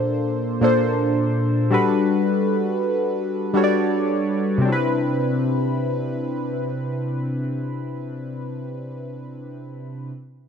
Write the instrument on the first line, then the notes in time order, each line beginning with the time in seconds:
synth keys
Already playing: A#2 A#3 D4 A4 C5
0.61 A#2 A#3 D4 A4 C5
1.70 G3 D4 F#4 A4 B4
3.53 G3 D4 F#4 A4 C#5
3.64 D5
4.58 C3 C4
4.65 D4 E4
4.72 B4